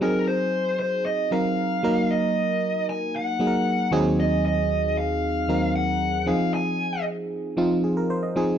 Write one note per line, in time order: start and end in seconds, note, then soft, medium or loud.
0.01 0.68 F#3 medium
0.01 0.68 C4 medium
0.01 0.68 D#4 medium
0.01 0.69 G#4 medium
0.01 0.26 A#4 medium
0.28 0.78 C5 medium
0.79 1.04 C5 medium
1.06 1.33 D#5 medium
1.31 1.82 F#3 medium
1.31 1.82 C4 medium
1.31 1.82 D#4 medium
1.31 1.82 A#4 medium
1.31 2.12 F5 loud
1.83 2.67 F#3 medium
1.83 2.67 A#3 medium
1.83 2.67 D#4 medium
1.83 2.68 A#4 medium
2.11 2.84 D#5 medium
2.90 3.13 G#5 loud
3.16 3.89 F#5 loud
3.39 3.90 F#3 medium
3.39 3.90 A#3 medium
3.39 3.91 D#4 medium
3.39 3.47 G#4 medium
3.47 3.94 A#4 medium
3.91 4.75 D#2 loud
3.91 4.76 F#3 medium
3.91 4.76 C4 medium
3.91 4.76 D#4 medium
3.91 4.76 G#4 loud
4.20 4.44 D#5 medium
4.46 4.99 D#5 medium
4.97 5.71 F5 loud
5.48 5.99 D#2 medium
5.48 5.99 F#3 medium
5.48 5.99 C4 medium
5.48 5.99 D#4 medium
5.48 5.99 A#4 medium
5.76 6.28 F#5 loud
6.26 6.94 F3 medium
6.26 6.94 C4 medium
6.26 6.94 D#4 medium
6.26 6.94 G#4 medium
6.26 6.54 F5 medium
6.54 7.02 G#5 loud
7.57 8.07 F3 medium
7.57 8.08 C4 medium
7.57 8.08 D#4 medium
7.57 8.08 F4 medium
7.84 7.96 G#4 medium
7.97 8.09 A#4 medium
8.10 8.22 C5 medium
8.23 8.48 D#5 medium
8.36 8.58 F3 medium
8.36 8.58 C4 medium
8.36 8.58 D#4 medium
8.36 8.58 G#4 medium